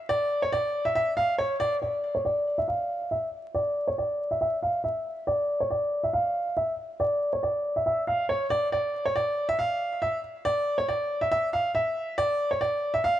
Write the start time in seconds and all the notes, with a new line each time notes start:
0.09 D5
0.42 C#5
0.52 D5
0.85 E5
0.95 E5
1.17 F5
1.39 C#5
1.60 D5
1.82 D5
2.15 C#5
2.25 D5
2.58 E5
2.68 F5
3.11 E5
3.54 D5
3.87 C#5
3.98 D5
4.31 E5
4.41 E5
4.63 F5
4.84 E5
5.27 D5
5.60 C#5
5.70 D5
6.03 E5
6.13 F5
6.57 E5
7.00 D5
7.33 C#5
7.43 D5
7.76 E5
7.86 E5
8.07 F5
8.29 C#5
8.50 D5
8.72 D5
9.05 C#5
9.15 D5
9.49 E5
9.59 F5
10.02 E5
10.45 D5
10.78 C#5
10.88 D5
11.21 E5
11.31 E5
11.53 F5
11.75 E5
12.18 D5
12.51 C#5
12.61 D5
12.94 E5
13.04 F5